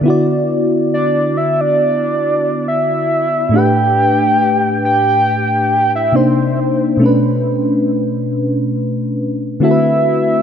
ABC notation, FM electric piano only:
X:1
M:4/4
L:1/8
Q:"Swing 16ths" 1/4=69
K:Ador
V:1 name="FM electric piano"
[D,B,EFd]8 | [A,,A,DGB]6 [C,_B,D_Ec]2 | [B,,A,^CDB]6 [D,A,=CEFAB]2 |]